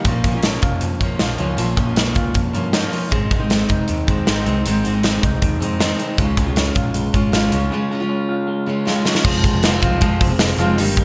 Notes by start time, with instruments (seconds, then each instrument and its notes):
Already playing: clean electric guitar A#3
0.05 picked electric bass A#1, steel-string acoustic guitar A#2 F3 A#3 C#4 F4, kick, closed hi-hat
0.24 picked electric bass A#1, steel-string acoustic guitar F3 A#3 C#4, kick, closed hi-hat
0.28 steel-string acoustic guitar F4
0.34 steel-string acoustic guitar A#3 C#4 F4
0.43 clean electric guitar C#4, snare, closed hi-hat
0.62 picked electric bass F1, clean electric guitar F4, kick, closed hi-hat
0.81 picked electric bass F2, clean electric guitar F3, closed hi-hat
1.00 picked electric bass F2, steel-string acoustic guitar F3 A#3 C#4, kick, closed hi-hat
1.04 steel-string acoustic guitar F4
1.19 picked electric bass A#1, steel-string acoustic guitar F3 A#3 C#4 F4, snare, closed hi-hat
1.38 picked electric bass C#2, steel-string acoustic guitar F3 A#3 C#4 F4, closed hi-hat
1.57 picked electric bass A#1, steel-string acoustic guitar A#2 F3 A#3 C#4 F4, closed hi-hat
1.76 picked electric bass A#1, steel-string acoustic guitar F3 A#3 C#4 F4, kick, closed hi-hat
1.86 steel-string acoustic guitar A#3 C#4 F4
1.96 clean electric guitar C#4, snare, closed hi-hat
2.15 picked electric bass C#2, clean electric guitar F4, kick, closed hi-hat
2.34 picked electric bass F2, clean electric guitar F3, kick, closed hi-hat
2.53 picked electric bass G2, steel-string acoustic guitar F3 A#3 C#4 F4, closed hi-hat
2.73 steel-string acoustic guitar F3 A#3 C#4 F4, clean electric guitar D#4, snare, closed hi-hat
2.83 clean electric guitar F4
2.92 steel-string acoustic guitar F3 A#3 C#4 F4, open hi-hat
3.11 picked electric bass G#1, steel-string acoustic guitar G#2 D#3 G#3 C4 D#4, kick, closed hi-hat
3.31 picked electric bass G#1, steel-string acoustic guitar D#3 G#3 C4 D#4, kick, closed hi-hat
3.40 steel-string acoustic guitar G#3 C4 D#4
3.50 clean electric guitar C4, snare, closed hi-hat
3.69 picked electric bass F1, clean electric guitar D#4, kick, closed hi-hat
3.88 picked electric bass D#2, clean electric guitar D#3, closed hi-hat
4.07 picked electric bass D#2, steel-string acoustic guitar D#3 G#3 C4 D#4, kick, closed hi-hat
4.26 picked electric bass G#1, steel-string acoustic guitar D#3 G#3 C4 D#4, snare, closed hi-hat
4.46 picked electric bass C2, steel-string acoustic guitar D#3 G#3 C4 D#4, closed hi-hat
4.66 picked electric bass G#1, steel-string acoustic guitar G#2 D#3 G#3 C4 D#4, closed hi-hat
4.84 picked electric bass G#1, steel-string acoustic guitar D#3 G#3 C4 D#4, closed hi-hat
4.93 steel-string acoustic guitar G#3 C4 D#4
5.03 clean electric guitar C4, snare, closed hi-hat
5.22 picked electric bass C2, clean electric guitar D#4, kick, closed hi-hat
5.42 picked electric bass D#2, clean electric guitar D#3, kick, closed hi-hat
5.60 picked electric bass F2, steel-string acoustic guitar D#3 G#3 C4 D#4, closed hi-hat
5.79 steel-string acoustic guitar D#3 G#3 C4 D#4, snare, closed hi-hat
5.98 steel-string acoustic guitar D#3 G#3 C4 D#4, closed hi-hat
6.17 picked electric bass C#2, steel-string acoustic guitar C#3 G#3 C#4 F4, kick, closed hi-hat
6.37 picked electric bass C#2, steel-string acoustic guitar C#3 G#3 C#4 F4, kick, closed hi-hat
6.46 steel-string acoustic guitar G#3 C#4 F4
6.56 clean electric guitar C#4, snare, closed hi-hat
6.75 picked electric bass A#1, clean electric guitar F4, kick, closed hi-hat
6.94 clean electric guitar G#3, closed hi-hat
7.13 picked electric bass G#1, steel-string acoustic guitar C#3 G#3 C#4 F4, kick, closed hi-hat
7.32 picked electric bass G#1, steel-string acoustic guitar C#3 G#3 C#4 F4, snare, closed hi-hat
7.52 picked electric bass C#2, steel-string acoustic guitar C#3 G#3 C#4 F4, closed hi-hat
7.72 steel-string acoustic guitar C#3 G#3 C#4 F4
7.91 steel-string acoustic guitar C#3 G#3 C#4 F4
8.00 steel-string acoustic guitar G#3 C#4 F4
8.09 clean electric guitar C#4
8.29 clean electric guitar F4
8.48 clean electric guitar G#3
8.66 steel-string acoustic guitar C#3 G#3 C#4 F4
8.85 steel-string acoustic guitar C#3 G#3 C#4 F4, snare
9.04 steel-string acoustic guitar C#3 G#3 C#4 F4, snare
9.15 snare
9.23 picked electric bass F1, steel-string acoustic guitar F3 G#3 C4 F4, kick, crash
9.44 clean electric guitar G#3, kick, hi-hat pedal, open hi-hat
9.53 picked electric bass F1
9.62 steel-string acoustic guitar F3 G#3 C4 F4, clean electric guitar A#3, snare, hi-hat pedal, open hi-hat
9.73 clean electric guitar C4
9.82 picked electric bass C2, steel-string acoustic guitar F3 G#3 C4 F4, kick, hi-hat pedal, open hi-hat
10.01 picked electric bass F2, steel-string acoustic guitar F3 G#3 C4 F4, kick, hi-hat pedal, open hi-hat
10.20 picked electric bass F1, clean electric guitar C4, kick, hi-hat pedal, open hi-hat
10.30 steel-string acoustic guitar G#3 C4 F4
10.39 clean electric guitar G#3, snare, hi-hat pedal, open hi-hat
10.58 picked electric bass F1, steel-string acoustic guitar F3 G#3 C4 F4, hi-hat pedal, open hi-hat
10.77 picked electric bass G1, clean electric guitar G2, steel-string acoustic guitar D#3 G3 A#3, hi-hat pedal, open hi-hat
10.81 steel-string acoustic guitar D#4
10.97 clean electric guitar G3, kick, hi-hat pedal, open hi-hat